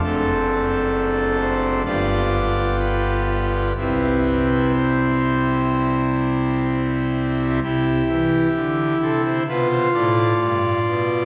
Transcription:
<<
  \new Staff \with { instrumentName = "Pipe organ" } { \time 4/4 \key c \major \tempo 4 = 65 a'4. c''8 d''4 b'4 | b'4 c''2 r4 | g'4. a'16 c''16 b'16 c''16 d''4. | }
  \new Staff \with { instrumentName = "Pipe organ" } { \clef bass \time 4/4 \key c \major << { <fis,, fis, a c' d'>2 <g,, g, g b f'>2 | <c, c g c' e'>1 | e'2 f'2 | } \\ { r1 | r1 | c8 e8 d8 c8 b,8 a,8 g,8 b,8 | } >> }
>>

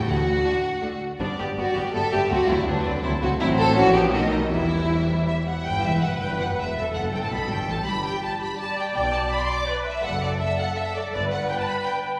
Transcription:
<<
  \new Staff \with { instrumentName = "Violin section" } { \time 3/4 \key d \mixolydian \tempo 4 = 163 fis''2~ fis''8 r8 | d''4 d''4 e''4 | d''4 b'4 a'4 | \key e \minor c''4 cis''4 dis''4 |
e''2 e''8 fis''8 | g''8 e''8 fis''8 g''8 fis''8 e''8 | e''8 fis''8 g''16 a''16 b''8 g''8 a''8 | b''8 g''8 a''8 b''8 a''8 g''8 |
g''8 a''8 b''16 c'''16 d'''8 d''8 e''8 | \key g \major fis''8 d''8 e''8 fis''8 e''8 d''8 | d''8 fis''8 g''16 a''16 b''8 g''8 r8 | }
  \new Staff \with { instrumentName = "Violin section" } { \time 3/4 \key d \mixolydian fis'2~ fis'8 r8 | d'8 g'8 fis'8 g'8 a'8 g'8 | fis'8 e'8 d'4 e'8 fis'8 | \key e \minor e'8 a'8 fis'8 g'8 fis'8 dis'8 |
e'2 e''8 fis''8 | g''8 e''8 fis''8 g''8 fis''8 e''8 | e''8 fis''8 g''16 a''16 b''8 g''8 a''8 | b''8 g''8 a''8 b''8 a''8 g''8 |
g''8 a''8 b''16 c'''16 d'''8 d''8 e''8 | \key g \major fis''8 d''8 e''8 fis''8 e''8 d''8 | d''8 fis''8 g''16 a''16 b''8 g''8 r8 | }
  \new Staff \with { instrumentName = "Viola section" } { \time 3/4 \key d \mixolydian << { r4 d'4 d'4 | b8 b8 b8 b8 b8 b8 | c'8 c'8 c'8 c'8 c'8 c'8 | \key e \minor c'4 cis'8 b8 a4 |
g2~ g8 r8 | b'2. | a'2. | g'2 d''4~ |
d''2 b'4 | \key g \major a'2. | b'2. | } \\ { r4 a4 a4 | g8 g8 g8 g8 g8 g8 | fis8 fis8 fis8 fis8 fis8 fis8 | fis4 e4 dis4 |
e2~ e8 r8 | r2. | r2. | r2. |
r2. | r2. | r2. | } >> }
  \new Staff \with { instrumentName = "Cello section" } { \clef bass \time 3/4 \key d \mixolydian d,4 r2 | g,8 g,8 g,8 g,8 g,8 g,8 | d,8 d,8 d,8 d,8 d,8 d,8 | \key e \minor a,4 ais,4 b,4 |
e,2~ e,8 r8 | g,8 e,8 fis,8 g,8 fis,8 e,8 | e,8 fis,8 g,16 a,16 b,8 g,8 a,8 | g,4 r2 |
b,4 r2 | \key g \major fis,4 r2 | g,4 r2 | }
  \new Staff \with { instrumentName = "Double bass section" } { \clef bass \time 3/4 \key d \mixolydian d,4 r2 | g,,8 g,,8 g,,8 g,,8 g,,8 g,,8 | d,8 d,8 d,8 d,8 d,8 d,8 | \key e \minor a,,4 ais,,4 b,,4 |
e,,2~ e,,8 r8 | g,,8 e,,8 fis,,8 g,,8 fis,,8 e,,8 | e,,8 fis,,8 g,,16 r16 b,,8 g,,8 a,,8 | g,,4 r2 |
b,,4 r2 | \key g \major fis,,4 r2 | g,,4 r2 | }
>>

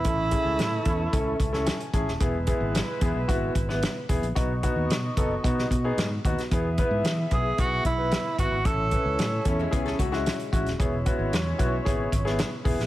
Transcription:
<<
  \new Staff \with { instrumentName = "Tenor saxophone" } { \time 4/4 \key e \major \tempo 4 = 112 e'2~ e'8 r4. | r1 | r1 | r4. gis'8 fis'8 e'4 fis'8 |
a'4. r2 r8 | r1 | }
  \new Staff \with { instrumentName = "Grand piano" } { \time 4/4 \key e \major << { r2 r8 e''8 gis''8 a''8 | r1 | r1 | r1 |
r1 | r1 | } \\ { <cis' e' a'>16 r16 <cis' e' gis'>8 r8 <cis' e' a'>16 r16 <cis' e' a'>8 r16 <cis' e' a'>8 r16 <cis' e' gis'>16 r16 | <b e' gis'>16 r16 <b e' gis'>8 r8 <b e' gis'>16 r16 <b e' fis'>8 r16 <b e' b'>8 r16 <b e' gis'>16 r16 | <b dis' fis'>16 r16 <b dis' fis'>8 r8 <b dis' a'>16 r16 <b dis' fis'>8 r16 <b dis' gis'>8 r16 <b dis' fis'>16 r16 | <b e' gis'>16 r16 <b e' b'>8 r8 <b e' gis'>16 r16 <b e' gis'>8 r16 <b e' b'>8 r16 <b e' fis'>16 r16 |
<cis' e' a'>16 r16 <cis' e' b'>8 r8 <cis' e' a'>16 r16 <cis' e' gis'>8 r16 <cis' e' fis'>8 r16 <cis' e' fis'>16 r16 | <b e' gis'>16 r16 <b e' fis'>8 r8 <b e' fis'>16 r16 <b e' gis'>8 r16 <b e' gis'>8 r16 <b e' gis'>16 r16 | } >> }
  \new Staff \with { instrumentName = "Horn section" } { \time 4/4 \key e \major <e a cis' a'>2.~ <e a cis' a'>8 r8 | <gis b e' b'>2.~ <gis b e' b'>8 r8 | <b dis' fis' dis''>2.~ <b dis' fis' dis''>8 r8 | <b e' gis' e''>2.~ <b e' gis' e''>8 r8 |
<cis' e' cis''>2.~ <cis' e' cis''>8 r8 | <gis cis' e' cis''>2.~ <gis cis' e' cis''>8 r8 | }
  \new Staff \with { instrumentName = "Hollow-body jazz guitar" } { \time 4/4 \key e \major r1 | r1 | r1 | r1 |
r4. r16 <gis e'>16 <b gis'>16 <cis' a'>16 <a fis'>16 <gis e'>4~ <gis e'>16 | r1 | }
  \new Staff \with { instrumentName = "Fingered electric bass" } { \clef bass \time 4/4 \key e \major a,,8. cis,16 a,8 e,8 cis,8 cis,8. r16 a,,16 dis,,16 | e,,8. gis,,8 r16 e,16 b,,16 gis,,8 gis,,8. r16 e,,16 ais,,16 | b,,8. dis,16 b,8 fis,,8 b,8 b,8 gis,8 dis,16 r16 | e,8. gis,16 e8 b,,8 b,,8 b,,8. r16 gis,,16 gis,,16 |
a,,8. cis,16 a,8 e,8 cis,8 cis,8. r16 a,,16 dis,,16 | e,,8. gis,,16 e,8 b,,8 gis,,8 gis,,8. r16 e,,16 ais,,16 | }
  \new DrumStaff \with { instrumentName = "Drums" } \drummode { \time 4/4 <hh bd>8 <hh bd>8 <hh sn>8 <hh bd>8 <hh bd>8 <hh bd>16 sn16 <hh sn>16 hh16 <hh bd>16 sn16 | <hh bd>8 <hh bd>8 <hh sn>8 <hh bd>8 <hh bd>8 <hh bd>16 sn16 <hh sn>8 <hh bd>16 hh16 | <hh bd>8 <hh bd>8 <hh sn>8 <hh bd>8 <hh bd>16 sn16 <hh bd>8 <hh sn>8 <hh bd>16 <hh sn>16 | <hh bd>8 <hh bd>8 <hh sn>8 <hh bd>8 <hh bd>8 <hh bd>8 <hh sn>8 <hh bd>8 |
<hh bd>8 <hh bd>8 <hh sn>8 <hh bd>8 <hh bd>16 sn16 <hh bd>16 sn16 <hh sn>16 hh16 <hh bd>16 <hh sn>16 | <hh bd>8 <hh bd>8 <hh sn>8 <hh bd>8 <hh bd>8 <hh bd>16 sn16 <hh sn>8 <hho bd>16 sn16 | }
>>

